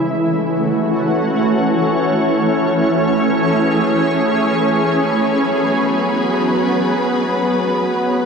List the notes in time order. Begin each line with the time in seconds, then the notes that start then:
Already playing: E3 A3 C#4
0.00 C#5
0.07 F#4
2.12 G#4
4.86 F#3 B3 F#4 B4 B5
5.38 B3